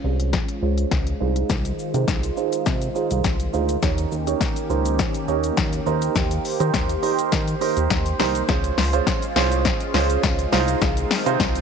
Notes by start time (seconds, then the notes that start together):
Already playing: G#3 C#4 F4 C5
0.04 C2 C#4 F4 G#4 C5
0.20 closed hi-hat
0.33 kick, snare, closed hi-hat
0.48 closed hi-hat
0.62 C#2 C#4 F4 G#4 C5
0.78 closed hi-hat
0.91 C#2, kick, snare, closed hi-hat
1.07 closed hi-hat
1.20 C2 D#3 D#4 F4 G#4 C5
1.36 closed hi-hat
1.50 C2, kick, snare, closed hi-hat, shaker
1.65 closed hi-hat, shaker
1.79 shaker
1.94 C3 D#4 F4 G#4 C5, closed hi-hat, shaker
2.08 C2, kick, snare, closed hi-hat, shaker
2.23 closed hi-hat, shaker
2.37 D#4 F4 G#4 C5, shaker
2.53 closed hi-hat, shaker
2.66 C3, kick, snare, closed hi-hat, shaker
2.82 closed hi-hat, shaker
2.95 D#4 F4 G#4 C5, shaker
3.11 C2, closed hi-hat, shaker
3.24 C2, kick, snare, closed hi-hat, shaker
3.40 closed hi-hat, shaker
3.53 D2 D#4 F4 G#4 C5, shaker
3.69 closed hi-hat, shaker
3.82 D#2 A#3 C#4 D#4 G4 A#4 C#5, kick, snare, closed hi-hat, shaker
3.98 closed hi-hat, shaker
4.12 D#2, shaker
4.27 D#4 G4 A#4 C#5, closed hi-hat, shaker
4.41 kick, snare, closed hi-hat, shaker
4.56 closed hi-hat, shaker
4.70 C#2 D#4 G4 A#4 C5, shaker
4.86 closed hi-hat, shaker
4.99 kick, snare, closed hi-hat, shaker
5.14 closed hi-hat, shaker
5.28 D#2 D#4 G4 A#4 C#5, shaker
5.44 closed hi-hat, shaker
5.57 D#2, kick, snare, closed hi-hat, shaker
5.73 closed hi-hat, shaker
5.86 D#2 D#4 G4 A#4 C5, shaker
6.02 closed hi-hat, shaker
6.16 D#2, kick, snare, closed hi-hat, shaker
6.31 closed hi-hat, shaker
6.45 open hi-hat, shaker
6.60 D#3 D#4 G4 A#4 C5, closed hi-hat, shaker
6.74 D#2, kick, snare, closed hi-hat, shaker
6.89 closed hi-hat, shaker
7.03 D#4 G4 A#4 C5, open hi-hat, shaker
7.19 closed hi-hat, shaker
7.32 D#3, kick, snare, closed hi-hat, shaker
7.48 closed hi-hat, shaker
7.61 D#4 G4 A#4 C5, open hi-hat, shaker
7.77 D#2, closed hi-hat, shaker
7.90 D#2, kick, snare, closed hi-hat, shaker
8.06 closed hi-hat, shaker
8.19 C2 D#4 G4 A#4 C5, snare, open hi-hat, shaker
8.35 closed hi-hat, shaker
8.48 C#2 G#3 C#4 F4 G#4 C5, kick, snare, closed hi-hat, shaker
8.64 closed hi-hat, shaker
8.78 C#2, snare, open hi-hat, shaker
8.93 C#4 F4 G#4 C5, closed hi-hat, shaker
9.07 kick, snare, closed hi-hat, tambourine, shaker
9.22 closed hi-hat, shaker
9.36 C2 C#4 F4 G#4 C5, snare, open hi-hat, shaker
9.52 closed hi-hat, shaker
9.65 kick, snare, closed hi-hat, shaker
9.80 closed hi-hat, shaker
9.94 C#2 C#4 F4 G#4 C5, snare, open hi-hat, shaker
10.10 closed hi-hat, shaker
10.23 C#2, kick, snare, closed hi-hat, tambourine, shaker
10.39 closed hi-hat, shaker
10.52 C2 D#3 C4 D#4 F4 G#4 C5, snare, open hi-hat, shaker
10.68 closed hi-hat, shaker
10.82 C2, kick, snare, closed hi-hat, shaker
10.97 closed hi-hat, shaker
11.11 snare, open hi-hat, shaker
11.26 C3 D#4 F4 G#4 C5, closed hi-hat, shaker
11.40 C2, kick, snare, closed hi-hat, tambourine, shaker
11.55 closed hi-hat, shaker